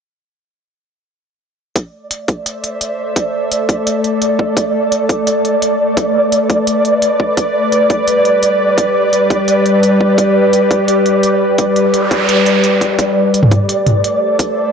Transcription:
1.75 synth drone A3, synth texture D5, kick, closed hi-hat
1.80 synth drone A4
1.90 synth drone E5
2.01 synth drone C5
2.11 closed hi-hat
2.28 kick, closed hi-hat
2.46 closed hi-hat
2.64 closed hi-hat
2.81 closed hi-hat
3.16 kick, closed hi-hat
3.52 closed hi-hat
3.69 kick, closed hi-hat
3.87 closed hi-hat
4.04 closed hi-hat
4.22 closed hi-hat
4.36 synth drone B4, kick
4.57 kick, closed hi-hat
4.92 closed hi-hat
5.09 kick, closed hi-hat
5.17 synth drone D5
5.27 closed hi-hat
5.45 closed hi-hat
5.62 closed hi-hat
5.97 kick, closed hi-hat
6.32 closed hi-hat
6.50 kick, closed hi-hat
6.67 closed hi-hat
6.85 closed hi-hat
7.02 closed hi-hat
7.20 kick
7.37 synth drone G3, kick, closed hi-hat
7.45 synth drone G4
7.72 closed hi-hat
7.90 kick, closed hi-hat
8.08 closed hi-hat
8.25 closed hi-hat
8.43 closed hi-hat
8.78 kick, closed hi-hat
9.13 closed hi-hat
9.30 kick, closed hi-hat
9.48 closed hi-hat
9.66 closed hi-hat
9.83 closed hi-hat
10.01 kick
10.18 kick, closed hi-hat
10.53 closed hi-hat
10.71 kick, closed hi-hat
10.88 closed hi-hat
11.06 closed hi-hat
11.23 closed hi-hat
11.58 kick, closed hi-hat, noise sweep
11.76 closed hi-hat
11.94 closed hi-hat
12.11 kick, closed hi-hat
12.29 closed hi-hat
12.46 closed hi-hat
12.64 closed hi-hat
12.81 kick, closed hi-hat
12.99 synth drone A3, synth texture D5, kick, closed hi-hat
13.09 synth drone A4
13.34 synth drone C5, closed hi-hat
13.43 synth drone E5, mid tom
13.51 kick, closed hi-hat
13.69 closed hi-hat
13.87 closed hi-hat, mid tom
14.04 closed hi-hat
14.39 kick, closed hi-hat

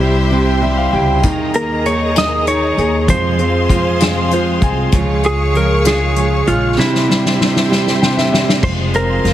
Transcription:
Already playing: upright bass C2, grand piano C3 G3, electric slide guitar G4, string section G4 C5 E5 C6
0.00 steel-string acoustic guitar G3 C4 E4 G4, grand piano E4
0.31 grand piano C3, steel-string acoustic guitar C3 G3 C4 E4 G4
0.62 grand piano G3 E5, steel-string acoustic guitar G3 C4 E4 G4
0.77 grand piano F5
0.93 upright bass C#2, steel-string acoustic guitar C4 E4 G4, grand piano E4 G5
1.22 upright bass D#2, steel-string acoustic guitar D#3 A#3 D#4 G#4, grand piano D#3, string section G#4 A#4 D#5 A#5, kick, closed hi-hat
1.54 grand piano A#3, steel-string acoustic guitar A#3 G#4, electric slide guitar A#4, closed hi-hat
1.85 steel-string acoustic guitar D#3 A#3 D#4 G#4, grand piano D#4, electric slide guitar C#5, closed hi-hat
2.15 steel-string acoustic guitar D#3 A#3 D#4 G#4, grand piano G#4, electric slide guitar D#5, snare, closed hi-hat
2.46 steel-string acoustic guitar D#3 A#3 D#4 G#4, grand piano D#4, electric slide guitar C#5, closed hi-hat
2.77 upright bass D#2, steel-string acoustic guitar A#3 D#4 G#4, grand piano G#4, closed hi-hat
3.06 steel-string acoustic guitar F2 C3 F3 G#3 C4 F4, upright bass F2, grand piano F3, string section G#4 C5 F5 C6, electric slide guitar C5, kick, closed hi-hat
3.38 steel-string acoustic guitar F3 G#3 C4 F4, grand piano C4, closed hi-hat
3.69 steel-string acoustic guitar F3 G#3 C4 F4, grand piano F4, kick, closed hi-hat
4.00 steel-string acoustic guitar F2 C3 F3 G#3 C4 F4, grand piano G#4, snare, closed hi-hat
4.30 steel-string acoustic guitar F3 G#3 C4 F4, grand piano F4 C5, closed hi-hat
4.62 upright bass C2, steel-string acoustic guitar F3 G#3 C4 F4, grand piano G#4 G#5, kick, closed hi-hat
4.92 upright bass C#2, steel-string acoustic guitar C#3 F3 G#3 C#4 F4, grand piano C#3, string section G#4 C#5 F5 C#6, kick, closed hi-hat
5.23 grand piano G#3, steel-string acoustic guitar G#3 C#4 F4, electric slide guitar G#4, closed hi-hat
5.54 grand piano C#3, steel-string acoustic guitar F3 G#3 C#4 F4, electric slide guitar A#4, closed hi-hat
5.85 steel-string acoustic guitar C#3 F3 G#3 C#4 F4, grand piano G#3, electric slide guitar G#4, snare, closed hi-hat
6.15 grand piano C#3, steel-string acoustic guitar F3 G#3 C#4 F4, closed hi-hat
6.46 upright bass A#1, grand piano G#3, steel-string acoustic guitar G#3 C#4 F4, electric slide guitar F4, closed hi-hat
6.76 steel-string acoustic guitar C3 G3 C4 E4 G4, grand piano C3, electric slide guitar E4, string section G4 C5 E5 C6, snare
6.95 snare
7.07 grand piano G3, steel-string acoustic guitar C4 E4 G4, snare
7.26 snare
7.37 steel-string acoustic guitar G3 C4 E4 G4, snare
7.41 grand piano C3
7.56 snare
7.69 steel-string acoustic guitar C3 G3 C4 E4 G4, grand piano G3, snare
7.87 snare
8.01 grand piano C3 G5, steel-string acoustic guitar G3 C4 E4 G4, snare
8.16 grand piano E5, snare
8.32 grand piano G3 E5, steel-string acoustic guitar C4 E4 G4, snare
8.49 snare
8.62 upright bass F1, steel-string acoustic guitar F2 C3 F3 G#3 F4 G#4, grand piano F3, string section G#4 C5 F5 C6, electric slide guitar C5, kick, crash
8.93 steel-string acoustic guitar F3 G#3 F4 G#4, grand piano C4, electric slide guitar A#4, closed hi-hat
9.24 upright bass F1, steel-string acoustic guitar F3 G#3 F4 G#4, grand piano F4, snare, closed hi-hat

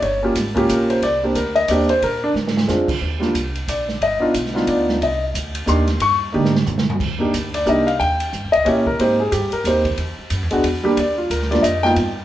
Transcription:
0.02 upright bass G1, grand piano C#5, kick, ride
0.22 grand piano A#3 C#4 F4 G4
0.35 upright bass G#1, kick, snare, hi-hat pedal, ride
0.55 grand piano A#3 C#4 F4 G4, kick, ride
0.69 upright bass A#1, grand piano A#4, kick, hi-hat pedal, ride
0.90 grand piano C5, ride
1.02 upright bass C2, grand piano D5, kick, ride
1.23 grand piano A#3 C4 D4 G4
1.35 upright bass D2, grand piano A#4, kick, hi-hat pedal, ride
1.55 grand piano D#5, ride
1.68 upright bass D#2, grand piano A#3 C4 D4 G4 D5, kick, hi-hat pedal, ride
1.89 grand piano C5, ride
2.02 upright bass A#2, grand piano A#4, kick, ride
2.24 grand piano D4
2.34 upright bass G#2, snare
2.47 snare
2.57 snare
2.67 upright bass F2, grand piano G#3 C4 D4 F4, snare, hi-hat pedal
2.88 kick, crash
3.01 upright bass D#2, kick
3.20 grand piano G3 A#3 D4 F4, snare
3.34 upright bass C2, kick, hi-hat pedal, ride
3.55 ride
3.68 upright bass A#1, grand piano D5, kick, hi-hat pedal, ride
3.88 snare
4.01 upright bass G1, grand piano D#5, kick, ride
4.20 grand piano B3 D4 D#4 F4, muted upright bass stroke
4.34 upright bass B1, kick, hi-hat pedal, ride
4.46 snare
4.54 grand piano B3 D4 D#4 F4, snare
4.67 upright bass D2, grand piano D5, kick, ride
4.89 snare
5.01 upright bass C2, grand piano D#5, kick, ride
5.34 upright bass D2, kick, hi-hat pedal, ride
5.55 ride
5.66 upright bass D#2, grand piano A#3 D4 D#4 G4 C6, kick, hi-hat pedal
5.88 snare, ride
6.00 upright bass G2, grand piano C#6, kick, ride
6.32 upright bass G#2, grand piano A#3 D4 D#4 G4, mid tom
6.45 snare
6.55 snare
6.67 upright bass A#2, floor tom, hi-hat pedal
6.78 snare
6.90 floor tom
7.00 upright bass D#2, kick, crash
7.19 grand piano A#3 D4 D#4 G4
7.34 upright bass D2, kick, hi-hat pedal, ride
7.54 grand piano D5, ride
7.66 upright bass C2, grand piano A#3 D4 D#4 G4 D#5, kick, hi-hat pedal
7.87 grand piano F5, ride
8.00 upright bass D#2, grand piano G5, kick, ride
8.20 ride
8.33 upright bass G2, kick, hi-hat pedal
8.45 upright bass D#2
8.52 upright bass C#2, grand piano D#5, ride
8.65 upright bass A#2, grand piano A#3 C#4 E4 G4 C#5, kick, ride
8.86 grand piano A#4, kick
8.99 upright bass G#2, grand piano A#3 C4 D#4 G4 C5, kick, ride
9.20 grand piano G#4
9.32 upright bass G2, grand piano G4, kick, hi-hat pedal, ride
9.52 grand piano A#4, muted upright bass stroke, ride
9.64 upright bass D#2, grand piano A#3 C4 D#4 G4 C5, kick, hi-hat pedal, ride
9.85 kick, ride
9.97 upright bass E2, kick, ride
10.19 muted upright bass stroke
10.30 upright bass F#2, kick, hi-hat pedal, ride
10.42 upright bass E2
10.51 upright bass D2, grand piano G#3 B3 D4 F#4, ride
10.63 upright bass E2, kick, ride
10.83 grand piano G3 A#3 D4 G4
10.97 upright bass D#2, grand piano D5, kick, ride
11.18 grand piano F4
11.30 upright bass D2, grand piano A#4, kick, hi-hat pedal, ride
11.42 snare
11.50 grand piano G3 A#3 D4 F4 D5, snare, ride
11.62 upright bass F2, grand piano D#5, kick, hi-hat pedal, ride
11.83 grand piano A#3 B3 D#4 F4 G5, snare
11.96 upright bass G2, kick, ride

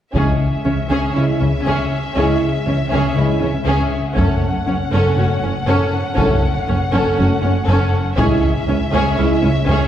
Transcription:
0.14 double bass section C#2, cello section C#3, french horn section G#3 E4, viola section C#4, violin section G#4 E5, taiko
0.64 double bass section C#2, cello section C#3, viola section C#4, violin section C#4
0.89 double bass section C#2, cello section C#3, viola section C#4, violin section G#4
1.14 double bass section C#2, cello section C#3, french horn section G#3 E4, viola section C#4, violin section E4
1.39 double bass section C#2, cello section C#3, viola section C#4, violin section C#4
1.65 double bass section C#2, cello section C#3, viola section C#4, violin section G#4
2.15 double bass section C#2, cello section C#3, french horn section G#3 E4, viola section C#4, violin section G#4
2.66 double bass section C#2, cello section C#3, viola section C#4, violin section C#4
2.90 double bass section C#2, cello section C#3, viola section C#4, violin section G#4
3.16 double bass section C#2, cello section C#3, french horn section G#3 E4, viola section C#4, violin section E4
3.40 double bass section C#2, cello section C#3, viola section C#4, violin section C#4
3.65 double bass section C#2, cello section C#3, viola section C#4, violin section G#4
4.16 double bass section F#1, cello section F#2, french horn section A3 C#4, viola section C#4, violin section A4 F#5, taiko
4.67 double bass section F#1, cello section F#2, viola section C#4, violin section C#4
4.93 double bass section F#1, cello section F#2, viola section C#4, violin section A4
5.16 double bass section F#1, cello section F#2, french horn section A3 C#4, viola section C#4, violin section F#4
5.42 double bass section F#1, cello section F#2, viola section C#4, violin section C#4
5.66 double bass section F#1, cello section F#2, viola section C#4, violin section A4
6.17 double bass section F#1, cello section F#2, french horn section A3 C#4, viola section C#4, violin section A4, taiko
6.68 double bass section F#1, cello section F#2, viola section C#4, violin section C#4
6.92 double bass section F#1, cello section F#2, viola section C#4, violin section A4
7.18 double bass section F#1, cello section F#2, french horn section A3 C#4, viola section C#4, violin section F#4
7.43 double bass section F#1, cello section F#2, viola section C#4, violin section C#4
7.67 double bass section F#1, cello section F#2, viola section C#4, violin section A4
8.17 double bass section C#2, cello section C#2, french horn section G#3 E4, viola section C#4, violin section G#4 E5, taiko
8.67 double bass section C#2, cello section C#2, viola section C#4, violin section C#4
8.92 double bass section C#2, cello section C#2, viola section C#4, violin section G#4
9.18 double bass section C#2, cello section C#2, french horn section G#3 E4, viola section C#4, violin section E4
9.42 double bass section C#2, cello section C#2, viola section C#4, violin section C#4
9.68 double bass section C#2, cello section C#2, viola section C#4, violin section G#4

